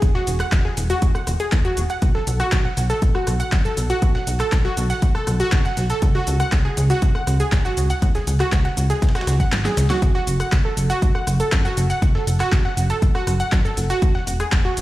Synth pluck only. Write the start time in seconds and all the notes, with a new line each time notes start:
0.15 F#4
0.40 F#5
0.65 G#4
0.90 F#4
1.15 F#5
1.40 G#4
1.65 F#4
1.90 F#5
2.15 A4
2.40 F#4
2.65 F#5
2.90 A4
3.15 F#4
3.40 F#5
3.65 A4
3.90 F#4
4.15 F#5
4.40 A4
4.65 F#4
4.90 F#5
5.15 A4
5.40 F#4
5.65 F#5
5.90 A4
6.15 F#4
6.40 F#5
6.65 G#4
6.90 F#4
7.15 F#5
7.40 G#4
7.65 F#4
7.90 F#5
8.15 G#4
8.40 F#4
8.65 F#5
8.90 G#4
9.15 F#4
9.40 F#5
9.65 G#4
9.90 F#4
10.15 F#4
10.40 F#5
10.65 A4
10.90 F#4
11.15 F#5
11.40 A4
11.65 F#4
11.90 F#5
12.15 A4
12.40 F#4
12.65 F#5
12.90 A4
13.15 F#4
13.40 F#5
13.65 A4
13.90 F#4
14.15 F#5
14.40 G#4
14.65 F#4